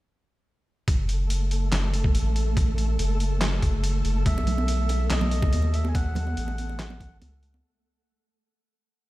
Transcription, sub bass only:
0, 0, Header, 1, 2, 480
1, 0, Start_track
1, 0, Tempo, 422535
1, 999, Time_signature, 4, 2, 24, 8
1, 10336, End_track
2, 0, Start_track
2, 0, Title_t, "Sub bass"
2, 0, Program_c, 0, 38
2, 997, Note_on_c, 0, 30, 100
2, 1939, Note_off_c, 0, 30, 0
2, 1957, Note_on_c, 0, 30, 100
2, 2419, Note_off_c, 0, 30, 0
2, 2437, Note_on_c, 0, 33, 102
2, 3379, Note_off_c, 0, 33, 0
2, 3398, Note_on_c, 0, 30, 96
2, 4100, Note_off_c, 0, 30, 0
2, 4117, Note_on_c, 0, 30, 102
2, 4579, Note_off_c, 0, 30, 0
2, 4597, Note_on_c, 0, 30, 98
2, 4819, Note_off_c, 0, 30, 0
2, 4838, Note_on_c, 0, 35, 100
2, 5779, Note_off_c, 0, 35, 0
2, 5798, Note_on_c, 0, 35, 99
2, 6260, Note_off_c, 0, 35, 0
2, 6278, Note_on_c, 0, 39, 102
2, 7220, Note_off_c, 0, 39, 0
2, 7238, Note_on_c, 0, 33, 97
2, 8180, Note_off_c, 0, 33, 0
2, 8197, Note_on_c, 0, 37, 99
2, 8659, Note_off_c, 0, 37, 0
2, 10336, End_track
0, 0, End_of_file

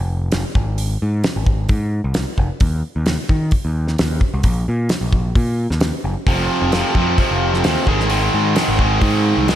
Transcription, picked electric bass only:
0, 0, Header, 1, 2, 480
1, 0, Start_track
1, 0, Key_signature, -4, "minor"
1, 0, Tempo, 457666
1, 825, Time_signature, 4, 2, 24, 8
1, 10019, End_track
2, 0, Start_track
2, 0, Title_t, "Picked electric bass"
2, 0, Program_c, 0, 34
2, 0, Note_on_c, 0, 29, 83
2, 302, Note_off_c, 0, 29, 0
2, 341, Note_on_c, 0, 29, 89
2, 448, Note_off_c, 0, 29, 0
2, 582, Note_on_c, 0, 32, 95
2, 1003, Note_off_c, 0, 32, 0
2, 1072, Note_on_c, 0, 44, 79
2, 1279, Note_off_c, 0, 44, 0
2, 1428, Note_on_c, 0, 32, 80
2, 1741, Note_off_c, 0, 32, 0
2, 1777, Note_on_c, 0, 44, 91
2, 2095, Note_off_c, 0, 44, 0
2, 2142, Note_on_c, 0, 36, 91
2, 2353, Note_off_c, 0, 36, 0
2, 2500, Note_on_c, 0, 29, 103
2, 2607, Note_off_c, 0, 29, 0
2, 2738, Note_on_c, 0, 39, 91
2, 2950, Note_off_c, 0, 39, 0
2, 3104, Note_on_c, 0, 39, 84
2, 3314, Note_off_c, 0, 39, 0
2, 3456, Note_on_c, 0, 51, 82
2, 3669, Note_off_c, 0, 51, 0
2, 3825, Note_on_c, 0, 39, 82
2, 4139, Note_off_c, 0, 39, 0
2, 4198, Note_on_c, 0, 39, 88
2, 4401, Note_off_c, 0, 39, 0
2, 4549, Note_on_c, 0, 36, 85
2, 4651, Note_off_c, 0, 36, 0
2, 4658, Note_on_c, 0, 34, 92
2, 4870, Note_off_c, 0, 34, 0
2, 4910, Note_on_c, 0, 46, 78
2, 5117, Note_off_c, 0, 46, 0
2, 5257, Note_on_c, 0, 34, 71
2, 5574, Note_off_c, 0, 34, 0
2, 5619, Note_on_c, 0, 46, 82
2, 5936, Note_off_c, 0, 46, 0
2, 5983, Note_on_c, 0, 39, 89
2, 6193, Note_off_c, 0, 39, 0
2, 6338, Note_on_c, 0, 30, 95
2, 6445, Note_off_c, 0, 30, 0
2, 6579, Note_on_c, 0, 29, 94
2, 6791, Note_off_c, 0, 29, 0
2, 6940, Note_on_c, 0, 29, 81
2, 7152, Note_off_c, 0, 29, 0
2, 7290, Note_on_c, 0, 41, 80
2, 7506, Note_off_c, 0, 41, 0
2, 7667, Note_on_c, 0, 29, 78
2, 7981, Note_off_c, 0, 29, 0
2, 8022, Note_on_c, 0, 39, 84
2, 8128, Note_off_c, 0, 39, 0
2, 8258, Note_on_c, 0, 32, 94
2, 8681, Note_off_c, 0, 32, 0
2, 8747, Note_on_c, 0, 44, 80
2, 8956, Note_off_c, 0, 44, 0
2, 9105, Note_on_c, 0, 32, 80
2, 9420, Note_off_c, 0, 32, 0
2, 9460, Note_on_c, 0, 44, 86
2, 9778, Note_off_c, 0, 44, 0
2, 9827, Note_on_c, 0, 36, 88
2, 10019, Note_off_c, 0, 36, 0
2, 10019, End_track
0, 0, End_of_file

